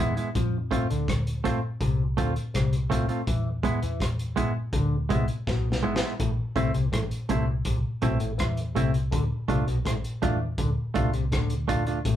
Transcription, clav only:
0, 0, Header, 1, 2, 480
1, 0, Start_track
1, 0, Key_signature, 0, "minor"
1, 0, Tempo, 730816
1, 230, Time_signature, 4, 2, 24, 8
1, 7987, End_track
2, 0, Start_track
2, 0, Title_t, "Clav"
2, 0, Program_c, 0, 7
2, 233, Note_on_c, 0, 53, 96
2, 376, Note_off_c, 0, 53, 0
2, 591, Note_on_c, 0, 50, 70
2, 735, Note_off_c, 0, 50, 0
2, 1192, Note_on_c, 0, 48, 74
2, 1335, Note_off_c, 0, 48, 0
2, 1431, Note_on_c, 0, 50, 69
2, 1503, Note_off_c, 0, 50, 0
2, 1670, Note_on_c, 0, 48, 78
2, 1814, Note_off_c, 0, 48, 0
2, 2150, Note_on_c, 0, 52, 85
2, 2294, Note_off_c, 0, 52, 0
2, 2513, Note_on_c, 0, 52, 76
2, 2656, Note_off_c, 0, 52, 0
2, 3114, Note_on_c, 0, 50, 77
2, 3257, Note_off_c, 0, 50, 0
2, 3356, Note_on_c, 0, 48, 81
2, 3426, Note_off_c, 0, 48, 0
2, 3592, Note_on_c, 0, 47, 80
2, 3736, Note_off_c, 0, 47, 0
2, 3831, Note_on_c, 0, 44, 72
2, 3903, Note_off_c, 0, 44, 0
2, 4069, Note_on_c, 0, 45, 86
2, 4142, Note_off_c, 0, 45, 0
2, 4309, Note_on_c, 0, 48, 72
2, 4382, Note_off_c, 0, 48, 0
2, 4427, Note_on_c, 0, 48, 75
2, 4500, Note_off_c, 0, 48, 0
2, 4545, Note_on_c, 0, 45, 83
2, 4619, Note_off_c, 0, 45, 0
2, 4787, Note_on_c, 0, 48, 71
2, 4932, Note_off_c, 0, 48, 0
2, 5027, Note_on_c, 0, 48, 67
2, 5100, Note_off_c, 0, 48, 0
2, 5268, Note_on_c, 0, 47, 69
2, 5341, Note_off_c, 0, 47, 0
2, 5387, Note_on_c, 0, 45, 73
2, 5460, Note_off_c, 0, 45, 0
2, 5503, Note_on_c, 0, 52, 79
2, 5650, Note_off_c, 0, 52, 0
2, 5747, Note_on_c, 0, 48, 77
2, 5892, Note_off_c, 0, 48, 0
2, 5986, Note_on_c, 0, 50, 94
2, 6060, Note_off_c, 0, 50, 0
2, 6231, Note_on_c, 0, 48, 70
2, 6303, Note_off_c, 0, 48, 0
2, 6349, Note_on_c, 0, 47, 66
2, 6422, Note_off_c, 0, 47, 0
2, 6469, Note_on_c, 0, 45, 83
2, 6542, Note_off_c, 0, 45, 0
2, 6712, Note_on_c, 0, 52, 66
2, 6856, Note_off_c, 0, 52, 0
2, 6955, Note_on_c, 0, 50, 70
2, 7026, Note_off_c, 0, 50, 0
2, 7194, Note_on_c, 0, 48, 78
2, 7265, Note_off_c, 0, 48, 0
2, 7312, Note_on_c, 0, 48, 71
2, 7384, Note_off_c, 0, 48, 0
2, 7433, Note_on_c, 0, 50, 82
2, 7577, Note_off_c, 0, 50, 0
2, 7914, Note_on_c, 0, 45, 90
2, 7986, Note_off_c, 0, 45, 0
2, 7987, End_track
0, 0, End_of_file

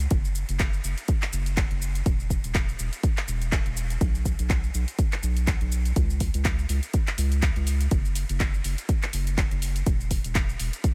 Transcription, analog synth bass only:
0, 0, Header, 1, 2, 480
1, 0, Start_track
1, 0, Tempo, 487805
1, 107, Time_signature, 4, 2, 24, 8
1, 10766, End_track
2, 0, Start_track
2, 0, Title_t, "Analog synth bass"
2, 0, Program_c, 0, 38
2, 108, Note_on_c, 0, 30, 96
2, 434, Note_off_c, 0, 30, 0
2, 482, Note_on_c, 0, 30, 92
2, 789, Note_off_c, 0, 30, 0
2, 826, Note_on_c, 0, 30, 86
2, 931, Note_off_c, 0, 30, 0
2, 1307, Note_on_c, 0, 30, 99
2, 1633, Note_off_c, 0, 30, 0
2, 1681, Note_on_c, 0, 30, 104
2, 1989, Note_off_c, 0, 30, 0
2, 2028, Note_on_c, 0, 28, 100
2, 2353, Note_off_c, 0, 28, 0
2, 2403, Note_on_c, 0, 28, 91
2, 2709, Note_off_c, 0, 28, 0
2, 2748, Note_on_c, 0, 28, 88
2, 2852, Note_off_c, 0, 28, 0
2, 3226, Note_on_c, 0, 28, 100
2, 3553, Note_off_c, 0, 28, 0
2, 3601, Note_on_c, 0, 28, 104
2, 3908, Note_off_c, 0, 28, 0
2, 3947, Note_on_c, 0, 35, 95
2, 4273, Note_off_c, 0, 35, 0
2, 4322, Note_on_c, 0, 35, 89
2, 4629, Note_off_c, 0, 35, 0
2, 4668, Note_on_c, 0, 35, 88
2, 4772, Note_off_c, 0, 35, 0
2, 5147, Note_on_c, 0, 35, 84
2, 5473, Note_off_c, 0, 35, 0
2, 5521, Note_on_c, 0, 35, 95
2, 5829, Note_off_c, 0, 35, 0
2, 5868, Note_on_c, 0, 37, 97
2, 6193, Note_off_c, 0, 37, 0
2, 6242, Note_on_c, 0, 37, 91
2, 6549, Note_off_c, 0, 37, 0
2, 6586, Note_on_c, 0, 37, 88
2, 6691, Note_off_c, 0, 37, 0
2, 7066, Note_on_c, 0, 37, 99
2, 7393, Note_off_c, 0, 37, 0
2, 7442, Note_on_c, 0, 37, 101
2, 7749, Note_off_c, 0, 37, 0
2, 7788, Note_on_c, 0, 30, 99
2, 8114, Note_off_c, 0, 30, 0
2, 8163, Note_on_c, 0, 30, 90
2, 8469, Note_off_c, 0, 30, 0
2, 8507, Note_on_c, 0, 30, 91
2, 8612, Note_off_c, 0, 30, 0
2, 8988, Note_on_c, 0, 30, 99
2, 9314, Note_off_c, 0, 30, 0
2, 9362, Note_on_c, 0, 30, 101
2, 9669, Note_off_c, 0, 30, 0
2, 9706, Note_on_c, 0, 28, 97
2, 10033, Note_off_c, 0, 28, 0
2, 10083, Note_on_c, 0, 28, 93
2, 10389, Note_off_c, 0, 28, 0
2, 10427, Note_on_c, 0, 28, 88
2, 10532, Note_off_c, 0, 28, 0
2, 10766, End_track
0, 0, End_of_file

